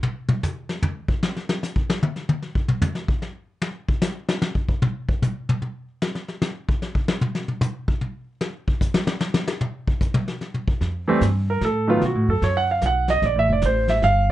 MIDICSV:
0, 0, Header, 1, 4, 480
1, 0, Start_track
1, 0, Tempo, 399734
1, 38, Time_signature, 3, 2, 24, 8
1, 17193, End_track
2, 0, Start_track
2, 0, Title_t, "Grand piano"
2, 0, Program_c, 0, 0
2, 13300, Note_on_c, 0, 52, 77
2, 13305, Note_on_c, 0, 55, 65
2, 13313, Note_on_c, 0, 57, 66
2, 13316, Note_on_c, 0, 60, 79
2, 13453, Note_off_c, 0, 52, 0
2, 13456, Note_off_c, 0, 55, 0
2, 13460, Note_off_c, 0, 57, 0
2, 13462, Note_off_c, 0, 60, 0
2, 13808, Note_on_c, 0, 70, 67
2, 13960, Note_off_c, 0, 70, 0
2, 13986, Note_on_c, 0, 69, 72
2, 14259, Note_on_c, 0, 51, 57
2, 14266, Note_on_c, 0, 54, 56
2, 14270, Note_off_c, 0, 69, 0
2, 14272, Note_on_c, 0, 57, 57
2, 14280, Note_on_c, 0, 59, 67
2, 14287, Note_on_c, 0, 65, 75
2, 14414, Note_off_c, 0, 51, 0
2, 14418, Note_off_c, 0, 54, 0
2, 14421, Note_off_c, 0, 57, 0
2, 14425, Note_off_c, 0, 59, 0
2, 14441, Note_off_c, 0, 65, 0
2, 14472, Note_on_c, 0, 66, 60
2, 14754, Note_off_c, 0, 66, 0
2, 14768, Note_on_c, 0, 69, 64
2, 14922, Note_off_c, 0, 69, 0
2, 14934, Note_on_c, 0, 73, 72
2, 15080, Note_off_c, 0, 73, 0
2, 15093, Note_on_c, 0, 78, 82
2, 15240, Note_off_c, 0, 78, 0
2, 15264, Note_on_c, 0, 77, 64
2, 15406, Note_off_c, 0, 77, 0
2, 15441, Note_on_c, 0, 78, 81
2, 15721, Note_off_c, 0, 78, 0
2, 15732, Note_on_c, 0, 75, 87
2, 15886, Note_off_c, 0, 75, 0
2, 15916, Note_on_c, 0, 74, 72
2, 16053, Note_off_c, 0, 74, 0
2, 16078, Note_on_c, 0, 76, 85
2, 16215, Note_off_c, 0, 76, 0
2, 16242, Note_on_c, 0, 74, 67
2, 16377, Note_off_c, 0, 74, 0
2, 16400, Note_on_c, 0, 72, 71
2, 16682, Note_off_c, 0, 72, 0
2, 16686, Note_on_c, 0, 76, 74
2, 16845, Note_off_c, 0, 76, 0
2, 16857, Note_on_c, 0, 77, 93
2, 17151, Note_off_c, 0, 77, 0
2, 17193, End_track
3, 0, Start_track
3, 0, Title_t, "Upright bass"
3, 0, Program_c, 1, 32
3, 12976, Note_on_c, 1, 41, 71
3, 13449, Note_off_c, 1, 41, 0
3, 13462, Note_on_c, 1, 43, 84
3, 13932, Note_off_c, 1, 43, 0
3, 13942, Note_on_c, 1, 45, 75
3, 14414, Note_off_c, 1, 45, 0
3, 14428, Note_on_c, 1, 47, 73
3, 14592, Note_off_c, 1, 47, 0
3, 14592, Note_on_c, 1, 45, 49
3, 14739, Note_off_c, 1, 45, 0
3, 14746, Note_on_c, 1, 42, 56
3, 14899, Note_off_c, 1, 42, 0
3, 14912, Note_on_c, 1, 42, 87
3, 15380, Note_off_c, 1, 42, 0
3, 15392, Note_on_c, 1, 35, 73
3, 15861, Note_off_c, 1, 35, 0
3, 15875, Note_on_c, 1, 34, 75
3, 16032, Note_off_c, 1, 34, 0
3, 16032, Note_on_c, 1, 33, 50
3, 16188, Note_off_c, 1, 33, 0
3, 16195, Note_on_c, 1, 29, 62
3, 16347, Note_off_c, 1, 29, 0
3, 16356, Note_on_c, 1, 33, 89
3, 16826, Note_off_c, 1, 33, 0
3, 16836, Note_on_c, 1, 31, 77
3, 17193, Note_off_c, 1, 31, 0
3, 17193, End_track
4, 0, Start_track
4, 0, Title_t, "Drums"
4, 35, Note_on_c, 9, 47, 106
4, 155, Note_off_c, 9, 47, 0
4, 342, Note_on_c, 9, 47, 96
4, 462, Note_off_c, 9, 47, 0
4, 519, Note_on_c, 9, 43, 104
4, 521, Note_on_c, 9, 44, 58
4, 639, Note_off_c, 9, 43, 0
4, 641, Note_off_c, 9, 44, 0
4, 831, Note_on_c, 9, 38, 58
4, 951, Note_off_c, 9, 38, 0
4, 990, Note_on_c, 9, 43, 111
4, 1110, Note_off_c, 9, 43, 0
4, 1302, Note_on_c, 9, 36, 76
4, 1422, Note_off_c, 9, 36, 0
4, 1473, Note_on_c, 9, 38, 88
4, 1593, Note_off_c, 9, 38, 0
4, 1639, Note_on_c, 9, 38, 39
4, 1759, Note_off_c, 9, 38, 0
4, 1790, Note_on_c, 9, 38, 90
4, 1910, Note_off_c, 9, 38, 0
4, 1958, Note_on_c, 9, 38, 45
4, 1961, Note_on_c, 9, 44, 53
4, 2078, Note_off_c, 9, 38, 0
4, 2081, Note_off_c, 9, 44, 0
4, 2113, Note_on_c, 9, 36, 79
4, 2233, Note_off_c, 9, 36, 0
4, 2277, Note_on_c, 9, 38, 94
4, 2397, Note_off_c, 9, 38, 0
4, 2433, Note_on_c, 9, 48, 101
4, 2553, Note_off_c, 9, 48, 0
4, 2592, Note_on_c, 9, 38, 41
4, 2712, Note_off_c, 9, 38, 0
4, 2749, Note_on_c, 9, 48, 92
4, 2869, Note_off_c, 9, 48, 0
4, 2910, Note_on_c, 9, 38, 34
4, 3030, Note_off_c, 9, 38, 0
4, 3066, Note_on_c, 9, 36, 76
4, 3186, Note_off_c, 9, 36, 0
4, 3223, Note_on_c, 9, 47, 90
4, 3343, Note_off_c, 9, 47, 0
4, 3381, Note_on_c, 9, 43, 107
4, 3384, Note_on_c, 9, 44, 56
4, 3501, Note_off_c, 9, 43, 0
4, 3504, Note_off_c, 9, 44, 0
4, 3542, Note_on_c, 9, 38, 46
4, 3662, Note_off_c, 9, 38, 0
4, 3703, Note_on_c, 9, 36, 83
4, 3823, Note_off_c, 9, 36, 0
4, 3866, Note_on_c, 9, 38, 43
4, 3987, Note_off_c, 9, 38, 0
4, 4342, Note_on_c, 9, 38, 100
4, 4462, Note_off_c, 9, 38, 0
4, 4665, Note_on_c, 9, 36, 78
4, 4785, Note_off_c, 9, 36, 0
4, 4823, Note_on_c, 9, 38, 99
4, 4826, Note_on_c, 9, 44, 60
4, 4943, Note_off_c, 9, 38, 0
4, 4946, Note_off_c, 9, 44, 0
4, 5146, Note_on_c, 9, 38, 102
4, 5266, Note_off_c, 9, 38, 0
4, 5305, Note_on_c, 9, 38, 104
4, 5425, Note_off_c, 9, 38, 0
4, 5465, Note_on_c, 9, 36, 66
4, 5585, Note_off_c, 9, 36, 0
4, 5626, Note_on_c, 9, 36, 73
4, 5746, Note_off_c, 9, 36, 0
4, 5788, Note_on_c, 9, 47, 101
4, 5908, Note_off_c, 9, 47, 0
4, 6107, Note_on_c, 9, 36, 73
4, 6227, Note_off_c, 9, 36, 0
4, 6272, Note_on_c, 9, 47, 101
4, 6275, Note_on_c, 9, 44, 60
4, 6392, Note_off_c, 9, 47, 0
4, 6395, Note_off_c, 9, 44, 0
4, 6593, Note_on_c, 9, 47, 98
4, 6713, Note_off_c, 9, 47, 0
4, 6747, Note_on_c, 9, 47, 51
4, 6867, Note_off_c, 9, 47, 0
4, 7227, Note_on_c, 9, 38, 92
4, 7347, Note_off_c, 9, 38, 0
4, 7386, Note_on_c, 9, 38, 39
4, 7506, Note_off_c, 9, 38, 0
4, 7545, Note_on_c, 9, 38, 40
4, 7665, Note_off_c, 9, 38, 0
4, 7705, Note_on_c, 9, 38, 102
4, 7708, Note_on_c, 9, 44, 57
4, 7825, Note_off_c, 9, 38, 0
4, 7828, Note_off_c, 9, 44, 0
4, 8029, Note_on_c, 9, 36, 81
4, 8149, Note_off_c, 9, 36, 0
4, 8190, Note_on_c, 9, 38, 49
4, 8310, Note_off_c, 9, 38, 0
4, 8346, Note_on_c, 9, 36, 69
4, 8466, Note_off_c, 9, 36, 0
4, 8504, Note_on_c, 9, 38, 103
4, 8624, Note_off_c, 9, 38, 0
4, 8661, Note_on_c, 9, 47, 99
4, 8782, Note_off_c, 9, 47, 0
4, 8823, Note_on_c, 9, 38, 57
4, 8943, Note_off_c, 9, 38, 0
4, 8983, Note_on_c, 9, 47, 54
4, 9103, Note_off_c, 9, 47, 0
4, 9139, Note_on_c, 9, 47, 104
4, 9141, Note_on_c, 9, 44, 64
4, 9259, Note_off_c, 9, 47, 0
4, 9262, Note_off_c, 9, 44, 0
4, 9462, Note_on_c, 9, 36, 78
4, 9582, Note_off_c, 9, 36, 0
4, 9620, Note_on_c, 9, 47, 47
4, 9740, Note_off_c, 9, 47, 0
4, 10096, Note_on_c, 9, 38, 101
4, 10216, Note_off_c, 9, 38, 0
4, 10419, Note_on_c, 9, 36, 74
4, 10539, Note_off_c, 9, 36, 0
4, 10579, Note_on_c, 9, 36, 79
4, 10584, Note_on_c, 9, 44, 60
4, 10699, Note_off_c, 9, 36, 0
4, 10704, Note_off_c, 9, 44, 0
4, 10737, Note_on_c, 9, 38, 113
4, 10857, Note_off_c, 9, 38, 0
4, 10892, Note_on_c, 9, 38, 110
4, 11012, Note_off_c, 9, 38, 0
4, 11054, Note_on_c, 9, 38, 104
4, 11174, Note_off_c, 9, 38, 0
4, 11216, Note_on_c, 9, 38, 106
4, 11336, Note_off_c, 9, 38, 0
4, 11377, Note_on_c, 9, 38, 101
4, 11498, Note_off_c, 9, 38, 0
4, 11537, Note_on_c, 9, 47, 102
4, 11657, Note_off_c, 9, 47, 0
4, 11858, Note_on_c, 9, 36, 79
4, 11978, Note_off_c, 9, 36, 0
4, 12019, Note_on_c, 9, 36, 78
4, 12023, Note_on_c, 9, 44, 64
4, 12139, Note_off_c, 9, 36, 0
4, 12143, Note_off_c, 9, 44, 0
4, 12178, Note_on_c, 9, 47, 120
4, 12298, Note_off_c, 9, 47, 0
4, 12340, Note_on_c, 9, 38, 38
4, 12460, Note_off_c, 9, 38, 0
4, 12501, Note_on_c, 9, 38, 39
4, 12621, Note_off_c, 9, 38, 0
4, 12660, Note_on_c, 9, 47, 50
4, 12780, Note_off_c, 9, 47, 0
4, 12820, Note_on_c, 9, 36, 83
4, 12940, Note_off_c, 9, 36, 0
4, 12981, Note_on_c, 9, 36, 20
4, 12983, Note_on_c, 9, 25, 37
4, 12983, Note_on_c, 9, 38, 38
4, 13101, Note_off_c, 9, 36, 0
4, 13103, Note_off_c, 9, 38, 0
4, 13462, Note_on_c, 9, 36, 21
4, 13463, Note_on_c, 9, 38, 54
4, 13465, Note_on_c, 9, 44, 50
4, 13582, Note_off_c, 9, 36, 0
4, 13583, Note_off_c, 9, 38, 0
4, 13585, Note_off_c, 9, 44, 0
4, 13944, Note_on_c, 9, 36, 22
4, 13944, Note_on_c, 9, 38, 41
4, 14064, Note_off_c, 9, 36, 0
4, 14064, Note_off_c, 9, 38, 0
4, 14427, Note_off_c, 9, 25, 0
4, 14427, Note_on_c, 9, 25, 40
4, 14427, Note_on_c, 9, 38, 34
4, 14428, Note_on_c, 9, 36, 15
4, 14548, Note_off_c, 9, 36, 0
4, 14548, Note_off_c, 9, 38, 0
4, 14912, Note_on_c, 9, 36, 23
4, 14916, Note_on_c, 9, 38, 43
4, 15032, Note_off_c, 9, 36, 0
4, 15036, Note_off_c, 9, 38, 0
4, 15388, Note_on_c, 9, 38, 52
4, 15390, Note_on_c, 9, 44, 49
4, 15393, Note_on_c, 9, 36, 23
4, 15508, Note_off_c, 9, 38, 0
4, 15510, Note_off_c, 9, 44, 0
4, 15513, Note_off_c, 9, 36, 0
4, 15707, Note_on_c, 9, 38, 46
4, 15827, Note_off_c, 9, 38, 0
4, 15874, Note_on_c, 9, 36, 22
4, 15879, Note_off_c, 9, 25, 0
4, 15879, Note_on_c, 9, 25, 43
4, 15879, Note_on_c, 9, 38, 38
4, 15994, Note_off_c, 9, 36, 0
4, 15999, Note_off_c, 9, 38, 0
4, 16352, Note_on_c, 9, 38, 57
4, 16354, Note_on_c, 9, 44, 48
4, 16355, Note_on_c, 9, 36, 18
4, 16472, Note_off_c, 9, 38, 0
4, 16474, Note_off_c, 9, 44, 0
4, 16475, Note_off_c, 9, 36, 0
4, 16665, Note_on_c, 9, 38, 39
4, 16785, Note_off_c, 9, 38, 0
4, 16836, Note_on_c, 9, 36, 19
4, 16840, Note_on_c, 9, 38, 41
4, 16956, Note_off_c, 9, 36, 0
4, 16960, Note_off_c, 9, 38, 0
4, 17193, Note_off_c, 9, 25, 0
4, 17193, End_track
0, 0, End_of_file